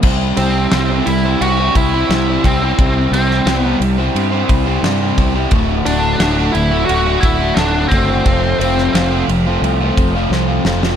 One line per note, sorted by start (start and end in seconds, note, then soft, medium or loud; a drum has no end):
0.03 0.31 C2 medium
0.03 0.72 C3 medium
0.03 0.73 G3 loud
0.03 0.37 C4 medium
0.03 0.38 E4 loud
0.03 0.39 G4 loud
0.03 0.39 C5 loud
0.03 kick loud
0.03 crash loud
0.37 0.65 C2 loud
0.37 1.08 C4 loud
0.37 0.73 C4 medium
0.37 0.73 E4 medium
0.37 0.74 G4 medium
0.37 0.74 C5 medium
0.37 ride medium
0.71 1.00 C2 medium
0.71 2.11 C3 medium
0.71 2.11 G3 medium
0.71 0.91 C4 medium
0.71 0.90 E4 loud
0.71 0.90 G4 medium
0.71 0.89 C5 loud
0.71 snare loud
0.71 ride loud
0.90 1.08 C4 medium
0.90 1.08 E4 medium
0.90 1.08 G4 medium
0.90 1.08 C5 medium
1.06 1.34 C2 medium
1.06 1.41 E4 loud
1.06 muted overdriven electric guitar stroke soft
1.06 ride medium
1.25 1.60 C4 medium
1.25 1.60 E4 medium
1.25 1.59 G4 medium
1.25 1.59 C5 medium
1.41 1.69 C2 medium
1.41 1.76 F#4 loud
1.41 ride loud
1.60 1.94 C4 medium
1.60 1.94 E4 medium
1.60 1.94 G4 medium
1.60 1.93 C5 medium
1.75 2.03 C2 medium
1.75 2.46 E4 medium
1.75 kick medium
1.75 ride medium
1.94 2.11 C4 medium
1.94 2.11 E4 medium
1.94 2.11 G4 medium
1.94 2.12 C5 medium
2.09 2.37 C2 medium
2.09 2.61 C3 loud
2.09 2.62 G3 medium
2.09 2.29 C4 medium
2.09 2.29 E4 medium
2.09 2.28 G4 medium
2.09 snare loud
2.09 ride medium
2.13 2.28 C5 medium
2.29 2.44 C4 medium
2.29 2.45 E4 medium
2.29 2.45 G4 medium
2.29 2.46 C5 medium
2.44 2.72 C2 medium
2.44 3.12 C4 medium
2.44 2.64 C4 medium
2.44 2.63 E4 medium
2.44 2.63 G4 medium
2.44 2.62 C5 medium
2.44 kick medium
2.44 ride medium
2.63 2.80 C4 medium
2.63 2.80 E4 medium
2.63 2.80 G4 medium
2.63 2.81 C5 medium
2.78 3.06 C2 medium
2.78 3.46 C3 medium
2.78 3.48 G3 medium
2.78 3.13 C4 medium
2.78 3.14 E4 medium
2.78 3.14 G4 loud
2.78 3.15 C5 loud
2.78 kick loud
2.78 ride medium
3.11 3.39 C2 loud
3.11 3.58 C4 medium
3.11 3.48 C4 medium
3.11 3.48 E4 medium
3.11 3.48 G4 medium
3.11 ride medium
3.16 3.49 C5 medium
3.31 snare soft
3.46 3.74 C2 medium
3.46 3.98 C3 loud
3.46 3.99 G3 medium
3.46 3.65 C4 loud
3.46 3.65 E4 loud
3.46 snare loud
3.46 ride loud
3.50 3.64 G4 medium
3.50 3.64 C5 loud
3.58 3.77 B3 medium
3.65 3.80 C4 medium
3.65 3.81 E4 medium
3.65 3.81 G4 medium
3.65 3.81 C5 medium
3.80 4.08 C2 medium
3.80 muted overdriven electric guitar stroke soft
3.80 ride medium
3.98 4.33 C4 medium
3.98 4.32 E4 medium
3.98 4.32 G4 medium
3.98 4.31 C5 medium
4.15 4.43 G2 medium
4.15 ride loud
4.32 4.68 C4 medium
4.32 4.67 E4 medium
4.32 4.66 G4 medium
4.32 4.66 C5 medium
4.49 4.77 C2 medium
4.49 kick medium
4.49 ride medium
4.67 4.83 C4 medium
4.67 4.83 E4 medium
4.67 4.84 G4 medium
4.67 4.84 C5 medium
4.83 5.11 G2 medium
4.83 5.35 C3 medium
4.83 5.35 G3 medium
4.83 5.01 C4 medium
4.83 5.01 E4 medium
4.83 5.00 G4 loud
4.83 4.99 C5 medium
4.83 snare loud
4.83 ride medium
5.00 5.17 C4 medium
5.00 5.18 E4 medium
5.00 5.18 G4 medium
5.00 5.19 C5 medium
5.17 5.45 C2 medium
5.17 5.36 C4 medium
5.17 5.35 E4 medium
5.17 5.34 G4 medium
5.17 5.34 C5 medium
5.17 kick medium
5.17 ride medium
5.35 5.51 C4 medium
5.35 5.51 E4 medium
5.35 5.50 G4 medium
5.35 5.50 C5 medium
5.51 5.80 D1 medium
5.51 6.19 D2 loud
5.51 5.85 A2 loud
5.51 5.85 D3 loud
5.51 5.87 A3 loud
5.51 5.87 F#4 loud
5.51 kick loud
5.51 ride loud
5.86 6.14 D1 loud
5.86 6.19 A2 medium
5.86 6.20 D3 medium
5.86 6.21 A3 medium
5.86 6.57 D4 loud
5.86 6.21 F#4 medium
5.86 ride medium
6.19 6.48 D1 medium
6.19 6.72 D2 loud
6.19 6.54 A2 medium
6.19 6.38 D3 loud
6.19 6.38 A3 loud
6.19 6.37 F#4 medium
6.19 snare loud
6.19 ride loud
6.38 6.54 D3 medium
6.38 6.55 A3 medium
6.38 6.55 F#4 medium
6.52 6.82 D1 loud
6.52 6.85 E4 loud
6.52 muted overdriven electric guitar stroke soft
6.52 ride medium
6.71 7.06 D3 medium
6.71 7.06 A3 medium
6.71 7.05 F#4 medium
6.85 7.17 D1 medium
6.85 7.20 F#4 loud
6.85 ride loud
7.06 7.40 D3 medium
7.06 7.39 A3 medium
7.06 7.39 F#4 medium
7.21 7.51 D1 medium
7.21 7.57 E4 loud
7.21 kick loud
7.21 ride medium
7.40 7.57 D3 medium
7.40 7.58 A3 medium
7.40 7.58 F#4 medium
7.54 7.85 D1 medium
7.54 8.09 D2 loud
7.54 7.88 D4 loud
7.54 snare loud
7.54 ride medium
7.58 7.91 A2 loud
7.58 7.76 D3 medium
7.58 7.75 A3 medium
7.58 7.74 F#4 medium
7.75 7.92 D3 medium
7.75 7.92 A3 medium
7.75 7.93 F#4 medium
7.89 8.20 F#1 loud
7.89 8.24 A2 medium
7.89 8.58 C4 medium
7.89 kick medium
7.89 ride medium
7.93 8.11 D3 medium
7.93 8.11 A3 medium
7.93 8.09 F#4 medium
8.10 8.26 D3 medium
8.10 8.25 A3 medium
8.10 8.25 F#4 medium
8.26 8.54 F1 medium
8.26 8.94 F2 medium
8.26 8.94 C3 loud
8.26 8.60 F3 loud
8.26 8.60 A3 loud
8.26 8.62 C4 loud
8.26 8.62 F4 loud
8.26 kick loud
8.26 ride medium
8.59 8.88 F1 medium
8.59 8.94 F3 medium
8.59 8.95 A3 medium
8.59 9.24 C4 medium
8.59 8.96 C4 medium
8.59 ride medium
8.63 8.95 F4 medium
8.78 snare soft
8.94 9.22 F1 medium
8.94 9.46 F2 loud
8.94 9.46 C3 medium
8.94 9.12 F3 loud
8.94 9.12 A3 loud
8.94 9.12 C4 medium
8.94 9.10 F4 loud
8.94 snare loud
8.94 ride loud
9.11 9.29 F3 medium
9.11 9.29 A3 medium
9.11 9.30 C4 medium
9.11 9.30 F4 medium
9.28 9.56 F1 medium
9.28 muted overdriven electric guitar stroke soft
9.28 ride medium
9.46 9.81 F3 medium
9.46 9.81 A3 medium
9.46 9.81 C4 medium
9.46 9.79 F4 medium
9.62 9.90 C2 loud
9.62 ride medium
9.81 10.16 F3 medium
9.81 10.15 A3 medium
9.81 10.15 C4 medium
9.81 10.14 F4 medium
9.97 10.25 F1 medium
9.97 kick medium
9.97 ride medium
10.15 10.30 F3 medium
10.15 10.31 A3 medium
10.15 10.32 C4 medium
10.15 10.32 F4 medium
10.30 10.59 C2 loud
10.30 10.83 F2 medium
10.30 10.83 C3 medium
10.30 10.49 F3 medium
10.30 10.48 A3 medium
10.30 10.49 C4 loud
10.30 10.47 F4 medium
10.30 snare medium
10.48 10.64 F3 medium
10.48 10.65 A3 medium
10.48 10.66 C4 medium
10.48 10.66 F4 medium
10.64 10.93 F1 medium
10.64 10.83 F3 medium
10.64 10.81 A3 medium
10.64 10.82 C4 medium
10.64 10.81 F4 medium
10.64 snare loud
10.82 10.96 F3 medium
10.82 10.96 A3 medium
10.82 10.96 C4 medium
10.82 10.96 F4 medium
10.82 snare loud